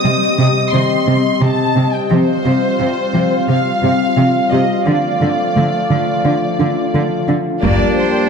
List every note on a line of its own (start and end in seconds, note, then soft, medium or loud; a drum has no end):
0.00 0.12 C3 soft
0.00 2.09 G3 medium
0.00 4.87 C4 medium
0.00 2.11 G4 medium
0.00 2.11 D#5 medium
0.00 0.70 D#6 medium
0.04 0.25 G3 medium
0.38 0.46 C3 medium
0.38 0.59 C3 medium
0.73 0.81 C3 medium
0.73 0.94 D#3 soft
0.73 1.42 C6 medium
1.07 1.15 C3 soft
1.07 1.28 C4 medium
1.42 1.50 C3 medium
1.42 1.63 C3 medium
1.42 1.94 A5 medium
1.76 1.84 C3 medium
1.76 1.97 C4 soft
1.94 2.11 G5 medium
2.10 2.18 C3 medium
2.10 2.32 F3 medium
2.10 4.83 G3 medium
2.10 7.63 F4 medium
2.10 3.49 C5 medium
2.10 7.63 F5 medium
2.45 2.53 C3 soft
2.80 2.88 C3 soft
2.80 3.01 F4 medium
3.14 3.22 C3 soft
3.14 3.35 F3 medium
3.48 3.56 C3 soft
3.48 3.70 C4 medium
3.48 4.50 F5 medium
3.83 3.91 C3 soft
3.83 4.04 G4 soft
4.17 4.25 C3 soft
4.17 4.39 F3 medium
4.51 4.60 C3 soft
4.51 4.73 G4 soft
4.51 4.86 D#5 soft
4.86 4.94 D3 soft
4.86 5.08 D3 medium
4.86 7.63 F3 medium
4.86 7.63 A3 soft
4.86 7.24 D5 soft
5.22 5.30 D3 soft
5.56 5.64 D3 soft
5.56 5.77 A3 medium
5.90 6.11 D3 medium
5.90 5.99 D3 soft
6.25 6.33 D3 soft
6.25 6.46 F3 soft
6.59 6.68 D3 soft
6.59 6.80 D4 soft
6.94 7.02 D3 soft
6.94 7.15 D3 medium
7.28 7.36 D3 soft
7.28 7.49 D4 soft
7.62 7.71 G2 medium
7.62 7.84 G3 medium
7.62 8.29 G3 medium
7.62 7.95 A#3 soft
7.62 8.29 A#3 soft
7.62 8.29 A#3 medium
7.62 8.29 D4 medium
7.62 8.29 G4 soft
7.62 8.29 A#4 medium
7.62 7.95 D5 medium
7.62 8.29 D5 medium
7.62 8.29 G5 soft
7.62 taiko medium
7.97 8.29 C5 soft